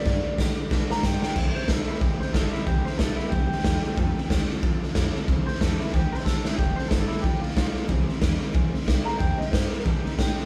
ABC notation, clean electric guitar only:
X:1
M:4/4
L:1/8
Q:"Swing" 1/4=184
K:C
V:1 name="Clean electric guitar"
d2 z3 _b g g | z c A E G c A E | G c A E G G3- | G3 z4 z |
z c A E G c A E | G c A E G F3 | z6 z _b | g _e c _B G _E G z |]